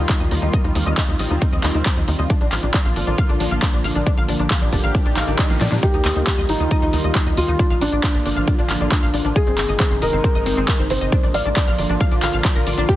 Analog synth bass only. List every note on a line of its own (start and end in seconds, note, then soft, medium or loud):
0.20 0.28 D#2 medium
0.31 0.39 D#2 medium
0.42 0.50 D#2 medium
0.64 0.72 D#2 medium
0.75 0.83 D#2 loud
0.86 0.94 D#2 medium
1.08 1.16 D#2 medium
1.20 1.27 A#1 loud
1.31 1.38 D#2 medium
1.53 1.60 D#2 medium
1.64 1.71 D#2 medium
1.75 1.82 D#2 medium
1.97 2.04 D#2 medium
2.08 2.15 D#2 loud
2.19 2.26 D#2 medium
2.41 2.48 A#1 medium
2.52 2.59 A#1 loud
2.63 2.70 A#1 medium
2.85 2.93 A#1 medium
2.96 3.04 G#1 loud
3.07 3.15 A#1 medium
3.29 3.37 A#1 medium
3.40 3.48 A#1 loud
3.51 3.59 A#1 medium
3.73 3.81 A#1 medium
3.84 3.92 A#1 medium
3.95 4.03 A#1 medium
4.17 4.25 A#1 medium
4.29 4.36 A#1 loud
4.39 4.47 A#1 medium
4.62 4.69 A#1 medium
4.73 4.80 G#1 loud
4.84 4.91 A#1 medium
5.06 5.13 A#1 medium
5.17 5.24 A#1 loud
5.28 5.35 A#1 medium
5.50 5.57 A#1 medium
5.61 5.68 A#2 loud
5.72 5.79 A#2 medium
5.94 6.01 D#2 medium
6.05 6.12 D#2 loud
6.16 6.23 D#2 medium
6.38 6.45 D#2 medium
6.49 6.56 A#1 loud
6.60 6.67 D#2 medium
6.82 6.90 D#2 medium
6.93 7.01 D#2 medium
7.04 7.12 D#2 medium
7.26 7.34 D#2 medium
7.37 7.45 D#2 medium
7.48 7.56 D#2 medium
7.70 7.78 A#1 medium
7.81 7.89 A#1 loud
7.92 8.00 A#1 medium
8.15 8.22 A#1 medium
8.26 8.33 G#1 loud
8.37 8.44 A#1 medium
8.59 8.66 A#1 medium
8.70 8.77 A#1 loud
8.81 8.88 A#1 medium
9.03 9.10 A#1 medium
9.14 9.21 A#1 loud
9.25 9.32 A#1 medium
9.47 9.54 G#1 medium
9.58 9.65 G#1 loud
9.69 9.76 G#1 medium
9.91 9.98 G#1 medium
10.02 10.09 D#1 loud
10.13 10.21 G#1 medium
10.35 10.43 G#1 medium
10.46 10.54 G#1 medium
10.57 10.65 G#1 medium
10.79 10.87 G#1 medium
10.90 10.98 G#1 loud
11.01 11.09 G#1 medium
11.23 11.31 A#1 medium
11.34 11.42 A#1 loud
11.46 11.53 A#1 medium
11.68 11.75 A#1 medium
11.79 11.86 G#1 loud
11.90 11.97 A#1 medium
12.12 12.19 A#1 medium
12.23 12.30 A#1 medium
12.34 12.41 A#1 medium
12.56 12.63 A#1 medium
12.67 12.74 A#1 medium
12.78 12.85 A#1 medium